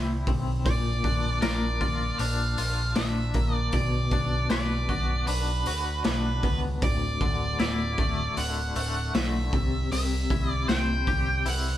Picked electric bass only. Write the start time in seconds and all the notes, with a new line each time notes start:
Already playing: C2
0.27 B1
0.66 A#1
1.04 A#1
1.43 A#1
2.20 A#1
2.58 A#1
2.97 A#1
3.35 A#1
3.73 B1
4.12 B1
4.50 B1
4.89 B1
5.27 B1
5.67 D2
6.06 B1
6.43 C#2
6.82 D1
7.21 D1
7.61 D1
8.38 D1
8.76 D1
9.15 B1
9.53 C2
9.92 C2
10.30 C2
10.69 C2
11.07 C2
11.46 C2